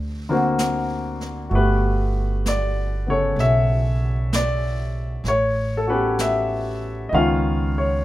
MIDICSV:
0, 0, Header, 1, 4, 480
1, 0, Start_track
1, 0, Tempo, 936037
1, 778, Time_signature, 4, 2, 24, 8
1, 4126, End_track
2, 0, Start_track
2, 0, Title_t, "Grand piano"
2, 0, Program_c, 0, 0
2, 0, Control_c, 0, 64, 127
2, 149, Note_on_c, 0, 50, 56
2, 151, Note_on_c, 0, 58, 50
2, 158, Note_on_c, 0, 60, 53
2, 160, Note_on_c, 0, 66, 62
2, 758, Note_off_c, 0, 66, 0
2, 765, Note_on_c, 0, 66, 45
2, 778, Note_on_c, 0, 57, 42
2, 781, Note_off_c, 0, 50, 0
2, 782, Note_off_c, 0, 58, 0
2, 785, Note_off_c, 0, 60, 0
2, 786, Control_c, 0, 64, 0
2, 787, Note_on_c, 0, 59, 43
2, 793, Note_on_c, 0, 67, 50
2, 796, Note_on_c, 0, 71, 77
2, 877, Control_c, 0, 64, 127
2, 1273, Note_on_c, 0, 74, 71
2, 1278, Note_off_c, 0, 71, 0
2, 1565, Note_off_c, 0, 59, 0
2, 1565, Note_off_c, 0, 74, 0
2, 1572, Note_on_c, 0, 59, 35
2, 1580, Note_on_c, 0, 49, 33
2, 1590, Note_on_c, 0, 69, 42
2, 1590, Note_on_c, 0, 73, 74
2, 1730, Note_off_c, 0, 73, 0
2, 1744, Note_on_c, 0, 76, 88
2, 2232, Note_off_c, 0, 76, 0
2, 2232, Note_on_c, 0, 74, 72
2, 2685, Note_off_c, 0, 66, 0
2, 2691, Note_off_c, 0, 57, 0
2, 2691, Note_off_c, 0, 59, 0
2, 2694, Note_off_c, 0, 49, 0
2, 2697, Control_c, 0, 64, 0
2, 2699, Note_off_c, 0, 67, 0
2, 2699, Note_off_c, 0, 69, 0
2, 2709, Note_on_c, 0, 73, 83
2, 2715, Note_off_c, 0, 74, 0
2, 2801, Control_c, 0, 64, 127
2, 2956, Note_off_c, 0, 73, 0
2, 2961, Note_on_c, 0, 69, 56
2, 3009, Note_on_c, 0, 66, 46
2, 3012, Note_off_c, 0, 69, 0
2, 3019, Note_on_c, 0, 59, 41
2, 3024, Note_on_c, 0, 71, 70
2, 3026, Note_on_c, 0, 61, 46
2, 3033, Note_on_c, 0, 67, 54
2, 3182, Note_off_c, 0, 71, 0
2, 3185, Note_on_c, 0, 76, 71
2, 3637, Note_on_c, 0, 75, 60
2, 3652, Note_off_c, 0, 76, 0
2, 3653, Note_off_c, 0, 59, 0
2, 3653, Note_off_c, 0, 66, 0
2, 3656, Note_off_c, 0, 61, 0
2, 3657, Note_on_c, 0, 51, 59
2, 3658, Note_off_c, 0, 75, 0
2, 3661, Note_on_c, 0, 59, 49
2, 3662, Control_c, 0, 64, 0
2, 3664, Note_off_c, 0, 67, 0
2, 3664, Note_on_c, 0, 61, 52
2, 3664, Note_on_c, 0, 77, 79
2, 3665, Note_on_c, 0, 65, 61
2, 3752, Control_c, 0, 64, 127
2, 3990, Note_on_c, 0, 73, 63
2, 4126, Note_off_c, 0, 51, 0
2, 4126, Note_off_c, 0, 59, 0
2, 4126, Note_off_c, 0, 61, 0
2, 4126, Note_off_c, 0, 65, 0
2, 4126, Note_off_c, 0, 73, 0
2, 4126, Note_off_c, 0, 77, 0
2, 4126, End_track
3, 0, Start_track
3, 0, Title_t, "Upright bass"
3, 0, Program_c, 1, 32
3, 0, Note_on_c, 1, 38, 75
3, 757, Note_off_c, 1, 38, 0
3, 774, Note_on_c, 1, 31, 72
3, 1711, Note_off_c, 1, 31, 0
3, 1724, Note_on_c, 1, 35, 77
3, 2666, Note_off_c, 1, 35, 0
3, 2686, Note_on_c, 1, 33, 74
3, 3632, Note_off_c, 1, 33, 0
3, 3654, Note_on_c, 1, 37, 75
3, 4126, Note_off_c, 1, 37, 0
3, 4126, End_track
4, 0, Start_track
4, 0, Title_t, "Drums"
4, 300, Note_on_c, 9, 25, 38
4, 300, Note_on_c, 9, 38, 38
4, 300, Note_on_c, 9, 44, 50
4, 351, Note_off_c, 9, 38, 0
4, 351, Note_off_c, 9, 44, 0
4, 619, Note_on_c, 9, 38, 25
4, 671, Note_off_c, 9, 38, 0
4, 780, Note_off_c, 9, 25, 0
4, 780, Note_on_c, 9, 25, 36
4, 1260, Note_off_c, 9, 25, 0
4, 1260, Note_on_c, 9, 25, 32
4, 1260, Note_on_c, 9, 38, 45
4, 1260, Note_on_c, 9, 44, 56
4, 1311, Note_off_c, 9, 38, 0
4, 1311, Note_off_c, 9, 44, 0
4, 1737, Note_off_c, 9, 25, 0
4, 1737, Note_on_c, 9, 25, 29
4, 1737, Note_on_c, 9, 38, 26
4, 1789, Note_off_c, 9, 38, 0
4, 2219, Note_off_c, 9, 25, 0
4, 2219, Note_on_c, 9, 25, 37
4, 2219, Note_on_c, 9, 38, 42
4, 2219, Note_on_c, 9, 44, 47
4, 2270, Note_off_c, 9, 38, 0
4, 2270, Note_off_c, 9, 44, 0
4, 2690, Note_off_c, 9, 25, 0
4, 2690, Note_on_c, 9, 25, 33
4, 2690, Note_on_c, 9, 38, 28
4, 2742, Note_off_c, 9, 38, 0
4, 3173, Note_off_c, 9, 25, 0
4, 3173, Note_on_c, 9, 25, 31
4, 3173, Note_on_c, 9, 38, 44
4, 3173, Note_on_c, 9, 44, 61
4, 3224, Note_off_c, 9, 38, 0
4, 3224, Note_off_c, 9, 44, 0
4, 3656, Note_off_c, 9, 25, 0
4, 3656, Note_on_c, 9, 25, 29
4, 4126, Note_off_c, 9, 25, 0
4, 4126, End_track
0, 0, End_of_file